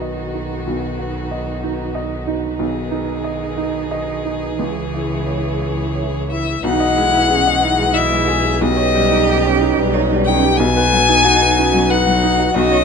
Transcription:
Already playing: B1 D#3 D#4 F#4 B4
0.00 D#5
0.34 D#4
0.67 B1
0.99 B3
1.31 D#5
1.63 D#4
1.95 D#5
2.27 D#4
2.59 B1 D#3 G#4
2.91 D#4
3.24 D#5
3.58 D#4
3.91 D#5
4.25 D#4
4.59 C#2 E3 E4 C#5
4.94 E4
5.27 C#5
5.62 E4
5.95 C#5
6.30 E4 E5
6.62 B1 E3 D#4 G#4 B4 F#5
6.80 D#5
6.97 G#3 E4
7.14 E4
7.29 C#4 G#4
7.47 D#5
7.63 D#4 E4
7.79 G#3
7.94 E4 D#5 E5
8.11 G#3
8.28 E4 G#4
8.45 G#4
8.61 B1 C#4 G4 D#5
8.77 C#5
8.95 G3
9.11 D#4
9.28 G4
9.45 C#5
9.61 D#4
9.78 G3
9.93 D#4 C#5
10.11 G3
10.25 C#4 D#4 G5
10.44 G4
10.57 B1 B3 F#4 G#5
10.77 B4
10.93 F#3
11.09 D#4
11.25 D#4 F#4
11.41 B4
11.58 C#4 D#4
11.74 F#3
11.89 D#4 B4 F#5
12.06 F#3
12.23 D#4
12.40 F#4
12.55 B1 C#4 F#4 C#5 D#5
12.71 C#5

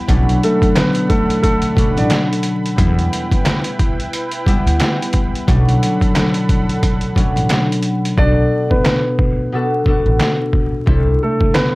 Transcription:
Already playing: G3 B3 E4 B5
0.07 B1 B2 D3 F#3 A3 C#4 D4 A4 F#5, kick, closed hi-hat
0.29 closed hi-hat
0.43 A3 A4, closed hi-hat
0.62 kick, closed hi-hat
0.76 B3 B4, finger snap, snare, clap, closed hi-hat
0.95 closed hi-hat
1.09 A3 A4, kick, closed hi-hat
1.30 closed hi-hat
1.43 A3 A4, kick, closed hi-hat
1.62 closed hi-hat
1.75 B2 F#3 A3 C#4 D4, kick, closed hi-hat
1.97 A1 D4 D5, closed hi-hat
2.10 finger snap, snare, clap, closed hi-hat
2.33 closed hi-hat
2.43 closed hi-hat
2.66 closed hi-hat
2.76 E2 G3 B3 E4 B4 G5, kick, closed hi-hat
2.99 closed hi-hat
3.13 closed hi-hat
3.32 kick, closed hi-hat
3.46 finger snap, snare, clap, closed hi-hat
3.64 closed hi-hat
3.79 kick, closed hi-hat
4.00 closed hi-hat
4.13 closed hi-hat
4.31 closed hi-hat
4.46 G3 B3 E4, kick, closed hi-hat
4.67 D2, closed hi-hat
4.80 finger snap, snare, clap, closed hi-hat
5.02 closed hi-hat
5.13 kick, closed hi-hat
5.35 closed hi-hat
5.47 B1 B2 D3 F#3 A3 C#4 D4 A4 F#5 B5, kick, closed hi-hat
5.69 closed hi-hat
5.83 closed hi-hat
6.01 kick, closed hi-hat
6.15 finger snap, snare, clap, closed hi-hat
6.34 closed hi-hat
6.49 kick, closed hi-hat
6.69 closed hi-hat
6.83 kick, closed hi-hat
7.01 closed hi-hat
7.15 B2 F#3 A3 C#4 D4, kick, closed hi-hat
7.36 A1, closed hi-hat
7.49 finger snap, snare, clap, closed hi-hat
7.72 closed hi-hat
7.83 closed hi-hat
8.05 closed hi-hat
8.17 B1 B2 B3 D4 F#4 A4 D5, kick
8.70 B3 B4, kick
8.85 finger snap, snare, clap
9.19 kick
9.52 B2 B3 D4 F#4 A4
9.85 B2 B3 D4 F#4 A4, kick
10.06 A1
10.20 finger snap, snare, clap
10.53 kick
10.86 C2 C3 G3 D4 E4 A4, kick
11.23 A3 A4
11.41 kick
11.54 B3 B4, finger snap, snare, clap

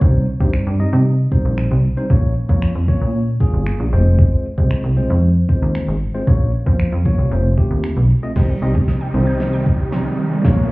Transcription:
0.01 C2 G3 C4 D#4 C5, kick
0.40 G2 G3 C4 D#4 C5, kick
0.53 finger snap
0.67 G2
0.79 G3 C4 D#4 D#5
0.93 C3
1.32 G3 C4 D#4 C5, kick
1.45 A#1
1.58 finger snap
1.71 C2
1.97 G3 C4 D#4 C5
2.10 A#1 A#3 C#4 F4 C#5, kick
2.49 F2 A#3 C#4 F4 C#5, kick
2.62 finger snap
2.75 F2
2.88 A#3 C#4 F4 C#5, kick
3.02 A#2
3.40 A#3 C#4 F4 G#4, kick
3.54 G1
3.67 finger snap
3.80 A#1
3.92 F1 G#3 C4 F4 C5
4.19 kick
4.58 C2 G#3 C4 F4 C5, kick
4.71 finger snap
4.84 C2
4.97 G#3 C4 F4 C5
5.10 F2
5.49 G#3 C4 F4 C5, kick
5.62 D#2
5.75 finger snap
5.88 G#1
6.14 G#3 C4 F4 C5
6.27 A#1 A#3 C#4 F4 C#5, kick
6.66 F2 A#3 C#4 F4 C5, kick
6.80 finger snap
6.92 F2
7.05 A#3 C#4 F4 C#5, kick
7.18 C2
7.31 F1 A3 C4 F4 C5
7.58 A3 C4 F4 G4, kick
7.71 D#2
7.84 finger snap
7.97 B1
8.23 A3 C4 F4 D#5
8.36 C2 C3 D#3 G3 C4 D#4 C5, kick, snare, crash, riser
8.49 G3
8.62 C2 G3 C4 D#4 D#5
8.75 G4, kick
8.88 D#5, snare
9.01 G5
9.14 C2 G3 C4 D#4 C5
9.27 G6
9.40 snare
9.53 G5
9.66 kick
9.79 G4
9.92 C4, snare
10.05 G3
10.18 D#3
10.31 G3
10.44 A#1 C#3 F3 A#3 C#4 F4 C#5, kick, snare
10.57 A#3

